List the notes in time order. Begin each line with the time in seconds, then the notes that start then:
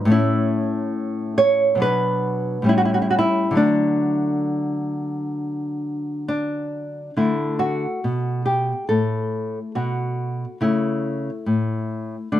0.05 A2 A3
0.10 C#4 E4
1.38 C#5
1.75 B2 F#3
1.80 D4 B4
2.62 A2 G3 C#4
2.69 E4
2.78 F#4
2.85 E4
2.94 F#4
3.02 E4
3.10 F#4
3.19 E4
3.51 D3 F#3
3.55 A3 D4
6.28 D4
7.17 D3 A3 E4
7.59 F#4
8.04 B2
8.46 G4
8.89 A2 A4
9.75 B2 F#4
10.61 C#3 A3 E4
11.46 A2
12.32 D3 A3 D4